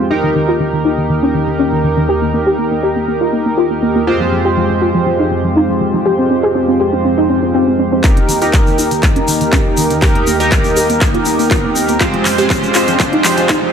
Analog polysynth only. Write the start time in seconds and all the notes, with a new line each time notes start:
0.11 D#4 G4 A#4
4.07 G#3 C4 F4 G4 C5
8.04 D#4 G4 A#4
8.42 D#4 G4 A#4
10.02 D#4 G4 A#4
10.40 D#4 G4 A#4
12.01 G#3 C4 F4 G4 C5
12.38 G#3 C4 F4 G4 C5